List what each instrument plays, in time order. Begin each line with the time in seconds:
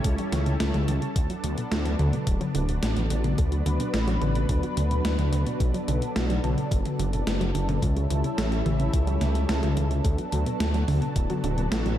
Already playing: analog synth pad G3 C#4 E4 A4
0.04 detuned saw bass C#2, synth arpeggio sound A3, kick, closed hi-hat
0.18 synth arpeggio sound G3, closed hi-hat
0.32 detuned saw bass C#2, synth arpeggio sound E3, snare, closed hi-hat
0.46 synth arpeggio sound C#3, closed hi-hat
0.60 detuned saw bass C#2, synth arpeggio sound A3, snare, closed hi-hat
0.74 detuned saw bass C#2, synth arpeggio sound G3, closed hi-hat, mid tom
0.88 detuned saw bass C#2, synth arpeggio sound E3, closed hi-hat
1.02 synth arpeggio sound C#3, closed hi-hat
1.16 detuned saw bass D2, analog synth pad F#3 B3 D4, synth arpeggio sound A3, kick, closed hi-hat
1.30 synth arpeggio sound F#3, closed hi-hat
1.44 detuned saw bass D2, synth arpeggio sound D3, closed hi-hat
1.58 synth arpeggio sound B2, closed hi-hat
1.72 detuned saw bass D2, synth arpeggio sound A3, snare, closed hi-hat
1.85 synth arpeggio sound F#3, closed hi-hat
1.99 detuned saw bass D2, synth arpeggio sound D3, closed hi-hat, mid tom
2.13 synth arpeggio sound B2, closed hi-hat
2.27 detuned saw bass D1, synth arpeggio sound A3, kick, closed hi-hat
2.41 synth arpeggio sound F#3, closed hi-hat, mid tom
2.55 detuned saw bass D1, synth arpeggio sound D3, closed hi-hat
2.69 synth arpeggio sound B2, closed hi-hat
2.82 detuned saw bass A1, synth arpeggio sound A3, snare, closed hi-hat
2.96 detuned saw bass A1, synth arpeggio sound F#3, closed hi-hat
3.10 detuned saw bass A1, synth arpeggio sound D3, closed hi-hat
3.24 synth arpeggio sound B2, closed hi-hat, mid tom
3.38 detuned saw bass D2, synth arpeggio sound A3, analog synth pad B4, kick, closed hi-hat
3.52 synth arpeggio sound F#3, closed hi-hat
3.66 detuned saw bass D2, synth arpeggio sound D3, closed hi-hat
3.80 synth arpeggio sound B2, closed hi-hat
3.94 detuned saw bass A1, synth arpeggio sound A3, snare, closed hi-hat
4.08 synth arpeggio sound F#3, closed hi-hat
4.21 detuned saw bass A1, synth arpeggio sound D3, closed hi-hat, mid tom
4.35 synth arpeggio sound B2, closed hi-hat
4.49 detuned saw bass D2, synth arpeggio sound A3, kick, closed hi-hat
4.63 synth arpeggio sound F#3, closed hi-hat
4.77 detuned saw bass D2, synth arpeggio sound D3, closed hi-hat
4.91 synth arpeggio sound B2, closed hi-hat
5.05 detuned saw bass D2, synth arpeggio sound A3, snare, closed hi-hat
5.18 detuned saw bass D2, synth arpeggio sound F#3, closed hi-hat, mid tom
5.32 detuned saw bass D2, synth arpeggio sound D3, closed hi-hat
5.46 synth arpeggio sound B2, closed hi-hat
5.60 detuned saw bass B1, synth arpeggio sound A3, analog synth pad A4, kick, closed hi-hat
5.74 synth arpeggio sound F#3, closed hi-hat
5.88 detuned saw bass B1, synth arpeggio sound D3, closed hi-hat
6.02 synth arpeggio sound B2, closed hi-hat
6.16 detuned saw bass B1, synth arpeggio sound A3, snare, closed hi-hat
6.30 synth arpeggio sound F#3, closed hi-hat
6.44 detuned saw bass B1, synth arpeggio sound D3, closed hi-hat, mid tom
6.57 synth arpeggio sound B2, closed hi-hat
6.71 detuned saw bass F#1, synth arpeggio sound A3, kick, closed hi-hat
6.85 synth arpeggio sound F#3, closed hi-hat, mid tom
6.99 detuned saw bass F#1, synth arpeggio sound D3, closed hi-hat
7.13 synth arpeggio sound B2, closed hi-hat
7.27 detuned saw bass F#1, synth arpeggio sound A3, snare, closed hi-hat
7.41 detuned saw bass F#1, synth arpeggio sound F#3, closed hi-hat
7.55 detuned saw bass F#1, synth arpeggio sound D3, closed hi-hat
7.69 synth arpeggio sound B2, closed hi-hat, mid tom
7.82 detuned saw bass C#2, analog synth pad G3 C#4 E4, synth arpeggio sound A3, kick, closed hi-hat
7.96 synth arpeggio sound G3, closed hi-hat
8.10 detuned saw bass C#2, synth arpeggio sound E3, closed hi-hat
8.24 synth arpeggio sound C#3, closed hi-hat
8.38 detuned saw bass A1, synth arpeggio sound A3, snare, closed hi-hat
8.52 synth arpeggio sound G3, closed hi-hat
8.66 detuned saw bass A1, synth arpeggio sound E3, closed hi-hat, mid tom
8.80 synth arpeggio sound C#3, closed hi-hat
8.93 detuned saw bass C#2, synth arpeggio sound A3, kick, closed hi-hat
9.07 synth arpeggio sound G3, closed hi-hat
9.21 detuned saw bass C#2, synth arpeggio sound C#3, snare, closed hi-hat
9.35 synth arpeggio sound C#4, closed hi-hat
9.49 detuned saw bass C#2, synth arpeggio sound C#3, snare, closed hi-hat
9.63 detuned saw bass C#2, synth arpeggio sound A3, closed hi-hat, mid tom
9.77 detuned saw bass C#2, synth arpeggio sound E3, closed hi-hat
9.91 synth arpeggio sound C#3, closed hi-hat
10.04 detuned saw bass D2, analog synth pad F#3 B3 D4, synth arpeggio sound A3, kick, closed hi-hat
10.18 synth arpeggio sound F#3, closed hi-hat
10.32 detuned saw bass D2, synth arpeggio sound D3, closed hi-hat
10.46 synth arpeggio sound B2, closed hi-hat
10.60 detuned saw bass D2, synth arpeggio sound A3, snare, closed hi-hat
10.74 synth arpeggio sound F#3, closed hi-hat
10.88 detuned saw bass D2, synth arpeggio sound D3, open hi-hat, mid tom
11.02 synth arpeggio sound B2, closed hi-hat
11.16 detuned saw bass D1, synth arpeggio sound A3, kick, closed hi-hat
11.30 synth arpeggio sound F#3, closed hi-hat, mid tom
11.44 detuned saw bass D1, synth arpeggio sound D3, closed hi-hat
11.58 synth arpeggio sound B2, closed hi-hat
11.71 detuned saw bass A1, synth arpeggio sound A3, snare, closed hi-hat
11.85 detuned saw bass A1, synth arpeggio sound F#3, closed hi-hat